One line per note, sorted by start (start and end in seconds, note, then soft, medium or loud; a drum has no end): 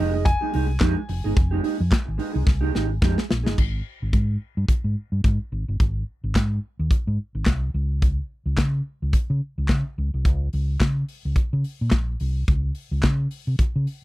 0.00 0.34 F1 loud
0.00 0.13 G#3 medium
0.00 0.13 D#4 medium
0.00 0.13 G4 loud
0.00 0.28 D#5 medium
0.13 0.24 G#3 soft
0.13 0.25 D#4 medium
0.13 0.25 G#4 medium
0.25 2.98 G#5 loud
0.25 muted clean electric guitar stroke soft
0.25 kick loud
0.25 closed hi-hat medium
0.41 0.51 G#3 medium
0.41 0.52 D#4 medium
0.41 0.53 G4 medium
0.52 0.76 C2 medium
0.52 0.67 G#3 medium
0.52 0.67 D#4 medium
0.52 0.66 G4 medium
0.52 open hi-hat medium
0.67 muted clean electric guitar stroke soft
0.80 0.94 F2 medium
0.80 0.98 G#3 medium
0.80 0.96 D#4 loud
0.80 0.95 G4 loud
0.80 kick loud
0.80 snare loud
0.80 clap medium
0.80 closed hi-hat medium
0.96 muted clean electric guitar stroke soft
1.08 1.22 F1 medium
1.08 muted clean electric guitar stroke soft
1.08 open hi-hat medium
1.24 1.35 G1 medium
1.24 1.35 G#3 soft
1.24 1.35 D#4 medium
1.24 1.35 G#4 medium
1.36 1.59 F1 loud
1.36 muted clean electric guitar stroke soft
1.36 kick loud
1.36 closed hi-hat medium
1.51 1.61 G#3 medium
1.51 1.62 D#4 medium
1.51 1.63 G4 medium
1.62 1.77 G#3 medium
1.62 1.78 D#4 medium
1.62 1.77 G4 medium
1.62 open hi-hat medium
1.78 1.90 F2 medium
1.78 muted clean electric guitar stroke soft
1.90 muted clean electric guitar stroke soft
1.90 kick loud
1.90 snare loud
1.90 clap medium
1.90 closed hi-hat medium
2.05 2.18 G#1 medium
2.05 muted clean electric guitar stroke soft
2.18 2.33 G#3 medium
2.18 2.33 D#4 medium
2.18 2.33 G4 medium
2.18 open hi-hat medium
2.33 2.45 C2 medium
2.33 2.44 G#3 soft
2.33 2.45 D#4 medium
2.33 2.45 G#4 medium
2.45 2.69 C2 medium
2.45 muted clean electric guitar stroke soft
2.45 kick loud
2.45 snare medium
2.61 2.73 G#3 medium
2.61 2.73 D#4 medium
2.61 2.74 G4 medium
2.74 2.98 G#1 medium
2.74 2.88 G#3 medium
2.74 2.89 D#4 medium
2.74 2.87 G4 medium
2.74 snare medium
2.89 muted clean electric guitar stroke soft
3.02 3.15 F2 medium
3.02 3.20 G#3 medium
3.02 3.17 D#4 medium
3.02 3.16 G4 loud
3.02 kick loud
3.02 snare medium
3.17 muted clean electric guitar stroke soft
3.17 snare medium
3.29 3.43 A#1 loud
3.29 muted clean electric guitar stroke soft
3.29 snare loud
3.44 3.56 G1 medium
3.44 3.57 G#3 medium
3.44 3.56 D#4 medium
3.44 3.56 G#4 medium
3.44 snare loud
3.58 3.80 G#1 medium
3.58 kick loud
3.58 crash medium
4.02 4.12 G#1 medium
4.13 4.36 G#2 medium
4.13 kick medium
4.13 closed hi-hat medium
4.57 4.67 G2 medium
4.68 kick medium
4.68 closed hi-hat medium
4.84 4.94 G#2 medium
5.12 5.22 G2 medium
5.24 5.37 G#2 medium
5.24 kick loud
5.24 closed hi-hat soft
5.52 5.65 G#1 medium
5.68 5.78 G1 medium
5.80 6.02 G#1 medium
5.80 kick loud
5.80 closed hi-hat soft
6.24 6.33 G#1 medium
6.35 6.58 G#2 medium
6.35 kick medium
6.35 snare medium
6.35 clap medium
6.35 closed hi-hat medium
6.79 6.89 D#2 medium
6.91 kick medium
6.91 closed hi-hat medium
7.07 7.17 G#2 medium
7.35 7.45 G#1 medium
7.46 7.69 C2 medium
7.46 kick medium
7.46 snare medium
7.46 clap medium
7.46 closed hi-hat medium
7.74 8.19 C#2 medium
8.02 kick loud
8.02 closed hi-hat medium
8.46 8.56 C#2 medium
8.57 8.80 C#3 medium
8.57 kick medium
8.57 snare medium
8.57 clap medium
8.57 closed hi-hat medium
9.02 9.12 C#2 medium
9.13 muted fingered electric bass stroke soft
9.13 kick medium
9.13 closed hi-hat medium
9.30 9.40 C#3 medium
9.58 9.67 C#2 medium
9.68 9.82 C#3 medium
9.68 kick medium
9.68 snare medium
9.68 clap medium
9.68 closed hi-hat soft
9.98 10.10 C#2 loud
10.14 10.25 C2 medium
10.25 10.47 C#2 medium
10.25 kick loud
10.25 closed hi-hat medium
10.53 10.76 C#2 medium
10.53 open hi-hat medium
10.80 11.03 C#3 medium
10.80 kick medium
10.80 snare loud
10.80 clap medium
10.80 closed hi-hat medium
11.09 open hi-hat medium
11.25 11.35 C#2 medium
11.36 muted fingered electric bass stroke soft
11.36 kick loud
11.36 closed hi-hat medium
11.53 11.62 C#3 medium
11.64 open hi-hat medium
11.81 11.91 A#2 medium
11.91 12.14 A#1 medium
11.91 kick medium
11.91 snare medium
11.91 clap medium
11.91 closed hi-hat medium
12.20 12.43 C2 medium
12.20 open hi-hat medium
12.48 12.70 C#2 medium
12.48 kick loud
12.48 closed hi-hat soft
12.75 open hi-hat medium
12.91 13.01 C#2 medium
13.03 13.26 C#3 medium
13.03 kick medium
13.03 snare loud
13.03 clap medium
13.03 closed hi-hat medium
13.31 open hi-hat medium
13.47 13.57 C3 medium
13.59 muted fingered electric bass stroke soft
13.59 kick loud
13.59 closed hi-hat medium
13.76 13.85 C#3 medium
13.87 open hi-hat medium